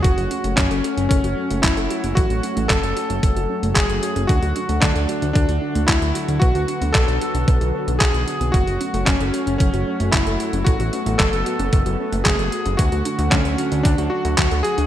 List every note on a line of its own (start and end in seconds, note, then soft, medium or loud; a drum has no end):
0.03 0.15 F#1 loud
0.03 6.38 F#3 medium
0.03 6.38 A3 medium
0.03 4.25 C#4 medium
0.03 0.53 F#4 medium
0.03 4.25 F#4 medium
0.03 0.15 A4 medium
0.03 kick loud
0.03 closed hi-hat medium
0.18 0.29 F#1 medium
0.18 0.24 F#4 medium
0.18 closed hi-hat soft
0.31 0.41 C#4 medium
0.31 closed hi-hat medium
0.44 0.55 F#1 medium
0.44 0.51 A3 loud
0.44 closed hi-hat soft
0.56 0.68 F#1 loud
0.56 0.70 F#3 medium
0.56 1.07 C#4 medium
0.56 kick loud
0.56 clap loud
0.56 closed hi-hat medium
0.71 0.82 F#1 medium
0.71 0.77 A4 medium
0.71 closed hi-hat soft
0.84 0.97 F#4 medium
0.84 closed hi-hat medium
0.97 1.08 F#1 medium
0.97 1.08 C#4 medium
0.97 closed hi-hat soft
1.09 1.22 F#1 loud
1.09 1.59 C#4 medium
1.09 1.21 A4 medium
1.09 kick loud
1.09 closed hi-hat medium
1.24 1.35 F#1 medium
1.24 1.30 F#4 medium
1.24 closed hi-hat soft
1.37 1.48 C#4 medium
1.50 1.61 F#1 medium
1.50 1.57 A3 medium
1.50 closed hi-hat soft
1.62 1.75 F#1 loud
1.62 1.76 F#3 medium
1.62 2.18 E4 medium
1.62 kick loud
1.62 clap loud
1.62 closed hi-hat medium
1.77 1.88 F#1 medium
1.77 1.83 A4 medium
1.77 closed hi-hat soft
1.90 2.03 F#4 medium
1.90 closed hi-hat medium
2.03 2.14 F#1 medium
2.03 2.14 C#4 medium
2.03 closed hi-hat soft
2.15 2.28 A1 loud
2.15 2.71 F#4 loud
2.15 2.27 A4 medium
2.15 kick loud
2.15 closed hi-hat medium
2.30 2.41 A1 medium
2.30 2.36 F#4 medium
2.30 closed hi-hat soft
2.43 2.54 C#4 medium
2.43 closed hi-hat medium
2.57 2.68 A1 medium
2.57 2.63 A3 loud
2.57 closed hi-hat soft
2.68 2.81 F#1 loud
2.68 2.83 F#3 medium
2.68 3.79 A4 loud
2.68 kick loud
2.68 clap loud
2.68 closed hi-hat medium
2.83 2.94 F#1 medium
2.83 2.89 A4 medium
2.83 closed hi-hat soft
2.96 3.09 F#4 medium
2.96 closed hi-hat medium
3.10 3.21 F#1 medium
3.10 3.20 C#4 medium
3.10 closed hi-hat soft
3.23 3.34 F#1 loud
3.23 3.33 A4 medium
3.23 kick loud
3.23 closed hi-hat medium
3.36 3.47 F#1 medium
3.36 3.43 F#4 medium
3.36 closed hi-hat soft
3.50 3.60 C#4 medium
3.63 3.74 F#1 medium
3.63 3.69 A3 loud
3.63 closed hi-hat soft
3.74 3.87 F#1 loud
3.74 3.89 F#3 medium
3.74 4.30 G#4 loud
3.74 kick loud
3.74 clap loud
3.74 closed hi-hat medium
3.89 4.00 F#1 medium
3.89 3.96 A4 medium
3.89 closed hi-hat soft
4.03 4.15 F#4 medium
4.03 closed hi-hat medium
4.16 4.27 F#1 medium
4.16 4.26 C#4 medium
4.16 closed hi-hat soft
4.27 4.40 D2 loud
4.27 8.50 D3 medium
4.27 4.83 F#4 loud
4.27 8.50 F#4 medium
4.27 4.40 A4 medium
4.27 kick loud
4.27 closed hi-hat medium
4.42 4.53 D2 medium
4.42 4.49 F#4 medium
4.42 closed hi-hat soft
4.56 4.66 D4 medium
4.56 closed hi-hat medium
4.69 4.80 D2 medium
4.69 4.75 A3 loud
4.69 closed hi-hat soft
4.80 4.93 D2 loud
4.80 4.95 F#3 medium
4.80 5.32 D4 medium
4.80 kick loud
4.80 clap loud
4.80 closed hi-hat medium
4.96 5.06 D2 medium
4.96 5.02 A4 medium
4.96 closed hi-hat soft
5.09 5.22 F#4 medium
5.09 closed hi-hat medium
5.22 5.33 D2 medium
5.22 5.33 D4 medium
5.22 closed hi-hat soft
5.33 5.46 D2 loud
5.33 5.84 D4 loud
5.33 5.46 A4 medium
5.33 kick loud
5.33 closed hi-hat medium
5.49 5.60 D2 medium
5.49 5.55 F#4 medium
5.49 closed hi-hat soft
5.62 5.72 D4 medium
5.75 5.86 D2 medium
5.75 5.82 A3 medium
5.75 closed hi-hat soft
5.87 5.99 D2 loud
5.87 6.01 F#3 medium
5.87 6.42 E4 medium
5.87 kick loud
5.87 clap loud
5.87 closed hi-hat medium
6.02 6.13 D2 medium
6.02 6.08 A4 medium
6.02 closed hi-hat soft
6.15 6.28 F#4 medium
6.15 closed hi-hat medium
6.28 6.39 D2 medium
6.28 6.39 D4 medium
6.28 closed hi-hat soft
6.40 6.53 B1 loud
6.40 8.52 F#3 medium
6.40 8.52 B3 medium
6.40 6.95 F#4 loud
6.40 6.52 B4 medium
6.40 kick loud
6.40 closed hi-hat medium
6.55 6.66 D2 medium
6.55 6.61 F#4 medium
6.55 closed hi-hat soft
6.68 6.79 D4 medium
6.68 closed hi-hat medium
6.81 6.92 D2 medium
6.81 6.88 B3 loud
6.81 closed hi-hat soft
6.93 7.06 B1 loud
6.93 7.07 F#3 medium
6.93 8.03 A4 loud
6.93 kick loud
6.93 clap loud
6.93 closed hi-hat medium
7.08 7.19 B1 medium
7.08 7.14 B4 medium
7.08 closed hi-hat soft
7.21 7.34 F#4 medium
7.21 closed hi-hat medium
7.34 7.45 B1 medium
7.34 7.45 D4 medium
7.34 closed hi-hat soft
7.48 7.59 B1 loud
7.48 7.58 B4 medium
7.48 kick loud
7.48 closed hi-hat medium
7.61 7.72 B1 medium
7.61 7.67 F#4 medium
7.61 closed hi-hat soft
7.74 7.81 B4 medium
7.87 7.99 B1 medium
7.87 7.94 D4 medium
7.87 closed hi-hat soft
7.99 8.12 B1 loud
7.99 8.55 G#4 medium
7.99 8.11 B4 medium
7.99 kick loud
7.99 clap loud
7.99 closed hi-hat medium
8.14 8.25 B1 medium
8.14 8.25 F#3 medium
8.14 closed hi-hat soft
8.27 8.38 D4 medium
8.27 closed hi-hat medium
8.41 8.52 B1 medium
8.41 8.47 B3 medium
8.41 closed hi-hat soft
8.52 8.65 F#1 loud
8.52 12.75 F#3 medium
8.52 14.87 A3 medium
8.52 10.64 C#4 medium
8.52 9.08 F#4 medium
8.52 12.75 F#4 medium
8.52 8.64 A4 medium
8.52 kick loud
8.52 closed hi-hat medium
8.67 8.78 F#1 medium
8.67 8.74 F#4 medium
8.67 closed hi-hat soft
8.81 8.91 C#4 medium
8.81 closed hi-hat medium
8.94 9.05 F#1 medium
8.94 9.00 A3 loud
8.94 closed hi-hat soft
9.05 9.18 F#1 loud
9.05 9.20 F#3 medium
9.05 9.57 C#4 medium
9.05 kick loud
9.05 clap loud
9.05 closed hi-hat medium
9.20 9.31 F#1 medium
9.20 9.27 A4 medium
9.20 closed hi-hat soft
9.34 9.46 F#4 medium
9.34 closed hi-hat medium
9.47 9.58 F#1 medium
9.47 9.57 C#4 medium
9.47 closed hi-hat soft
9.58 9.71 F#1 loud
9.58 10.14 C#4 medium
9.58 9.71 A4 medium
9.58 kick loud
9.58 closed hi-hat medium
9.74 9.84 F#1 medium
9.74 9.80 F#4 medium
9.74 closed hi-hat soft
9.87 9.97 C#4 medium
10.00 10.11 F#1 medium
10.00 10.06 A3 loud
10.00 closed hi-hat soft
10.11 10.24 F#1 loud
10.11 10.26 F#3 medium
10.11 10.67 E4 medium
10.11 kick loud
10.11 clap loud
10.11 closed hi-hat medium
10.26 10.37 F#1 medium
10.26 10.33 A4 medium
10.26 closed hi-hat soft
10.40 10.53 F#4 medium
10.40 closed hi-hat medium
10.53 10.64 F#1 medium
10.53 10.64 C#4 medium
10.53 closed hi-hat soft
10.64 10.77 A1 loud
10.64 12.77 B3 medium
10.64 11.20 F#4 loud
10.64 10.77 A4 medium
10.64 kick loud
10.64 closed hi-hat medium
10.80 10.91 A1 medium
10.80 10.86 F#4 medium
10.80 closed hi-hat soft
10.93 11.04 C#4 medium
10.93 closed hi-hat medium
11.06 11.17 A1 medium
11.06 11.13 A3 loud
11.06 closed hi-hat soft
11.18 11.31 F#1 loud
11.18 11.32 F#3 medium
11.18 12.21 A4 medium
11.18 kick loud
11.18 clap loud
11.18 closed hi-hat medium
11.33 11.44 F#1 medium
11.33 11.39 A4 medium
11.33 closed hi-hat soft
11.46 11.59 F#4 medium
11.46 closed hi-hat medium
11.59 11.70 F#1 medium
11.59 11.70 C#4 medium
11.59 closed hi-hat soft
11.73 11.84 F#1 loud
11.73 11.83 A4 medium
11.73 kick loud
11.73 closed hi-hat medium
11.86 11.97 F#1 medium
11.86 11.92 F#4 medium
11.86 closed hi-hat soft
11.99 12.10 C#4 medium
12.12 12.23 F#1 medium
12.12 12.19 A3 loud
12.12 closed hi-hat soft
12.24 12.37 F#1 loud
12.24 12.38 F#3 medium
12.24 12.80 G#4 medium
12.24 kick loud
12.24 clap loud
12.24 closed hi-hat medium
12.39 12.50 F#1 medium
12.39 12.45 A4 medium
12.39 closed hi-hat soft
12.52 12.65 F#4 medium
12.52 closed hi-hat medium
12.66 12.77 F#1 medium
12.66 12.76 C#4 medium
12.66 closed hi-hat soft
12.77 12.90 D2 loud
12.77 14.87 D3 medium
12.77 14.87 F#3 medium
12.77 13.33 F#4 medium
12.77 14.87 F#4 medium
12.77 12.89 A4 medium
12.77 kick loud
12.77 closed hi-hat medium
12.92 13.03 D2 medium
12.92 12.98 F#4 medium
12.92 closed hi-hat soft
13.05 13.16 D4 medium
13.05 closed hi-hat medium
13.19 13.30 D2 medium
13.19 13.25 A3 loud
13.19 closed hi-hat soft
13.30 13.43 D2 loud
13.30 13.44 F#3 medium
13.30 13.86 C#4 medium
13.30 kick loud
13.30 clap loud
13.30 closed hi-hat medium
13.45 13.56 D2 medium
13.45 13.51 A4 medium
13.45 closed hi-hat soft
13.58 13.71 F#4 medium
13.58 closed hi-hat medium
13.72 13.83 D2 medium
13.72 13.82 D4 medium
13.72 closed hi-hat soft
13.83 13.96 D2 loud
13.83 14.12 D4 medium
13.83 13.95 A4 medium
13.83 kick loud
13.83 closed hi-hat medium
13.98 14.09 D2 medium
13.98 14.05 F#4 medium
13.98 closed hi-hat soft
14.10 14.22 D4 medium
14.10 14.65 F#4 medium
14.25 14.36 D2 medium
14.25 14.31 A3 loud
14.25 closed hi-hat soft
14.38 14.49 D2 loud
14.38 14.51 F#3 medium
14.38 kick loud
14.38 clap loud
14.38 closed hi-hat loud
14.51 14.62 D2 medium
14.51 14.58 A4 medium
14.51 closed hi-hat soft
14.63 14.77 F#4 medium
14.63 14.87 G#4 loud
14.63 closed hi-hat medium
14.78 14.87 D2 medium
14.78 14.87 D4 medium
14.78 closed hi-hat soft